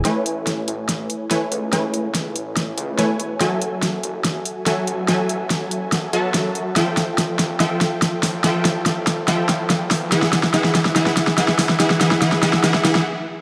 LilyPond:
<<
  \new Staff \with { instrumentName = "Supersaw synth" } { \time 4/4 \key a \major \tempo 4 = 143 <a e' b' cis'' gis''>2. <a e' b' cis'' gis''>4 | <a e' b' cis'' gis''>2. <a e' b' cis'' gis''>4 | <fis fis' a' e'' gis''>2. <fis fis' a' e'' gis''>4 | <fis fis' a' e'' gis''>2~ <fis fis' a' e'' gis''>8 <fis fis' a' e'' a''>4. |
<f f' a' e'' g''>2 <f f' a' e'' g''>2 | <f f' a' e'' g''>2 <f f' a' e'' g''>2 | <e e' gis' e'' fis''>4 <e e' gis' e'' fis''>4 <e e' gis' e'' fis''>4 <e e' gis' e'' fis''>4 | <e e' gis' e'' fis''>8 <e e' gis' e'' fis''>8 <e e' gis' e'' fis''>8 <e e' gis' e'' fis''>8 <e e' gis' e'' fis''>8 <e e' gis' e'' fis''>8 r4 | }
  \new Staff \with { instrumentName = "Analog synth bass" } { \clef bass \time 4/4 \key a \major a,,4. a,,4 r4 cis,8~ | cis,4. a,,4 cis,8 e,,4 | fis,,4. fis,,4 r4 a,,8~ | a,,4. fis,,4 b,,8 fis,4 |
f,,4. f,,4 r4 a,,8~ | a,,4. f,,4 a,,8 e,4 | e,,4. e,,4 r4 gis,,8~ | gis,,4. r2 r8 | }
  \new DrumStaff \with { instrumentName = "Drums" } \drummode { \time 4/4 <hh sn>8 hh8 <hh sn>8 hh8 <hh sn>8 hh8 <hh sn>8 hh8 | <hh sn>8 hh8 <hh sn>8 hh8 <hh sn>8 hh8 <hh sn>8 hh8 | <hh sn>8 hh8 <hh sn>8 hh8 <hh sn>8 hh8 <hh sn>8 hh8 | <hh sn>8 hh8 <hh sn>8 hh8 <hh sn>8 hh8 <hh sn>8 hh8 |
<hh sn>8 <hh sn>8 <hh sn>8 <hh sn>8 <hh sn>8 <hh sn>8 <hh sn>8 <hho sn>8 | <hh sn>8 <hh sn>8 <hh sn>8 <hh sn>8 <hh sn>8 <hh sn>8 <hh sn>8 <hho sn>8 | <hh sn>16 sn16 <hh sn>16 sn16 <hh sn>16 sn16 <hh sn>16 sn16 <hh sn>16 sn16 <hh sn>16 sn16 <hh sn>16 sn16 <hho sn>16 sn16 | <hh sn>16 sn16 <hh sn>16 sn16 <hh sn>16 sn16 <hh sn>16 sn16 <hh sn>16 sn16 <hh sn>16 sn16 r4 | }
>>